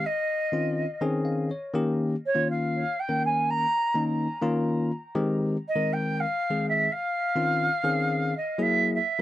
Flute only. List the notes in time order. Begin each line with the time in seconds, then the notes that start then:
0.06 D#5
2.26 C#5
2.50 F5
2.99 G5
3.25 G#5
3.50 A#5
5.68 D#5
5.93 G5
6.20 F5
6.69 E5
6.92 F5
8.37 D#5
8.62 E5
8.94 E5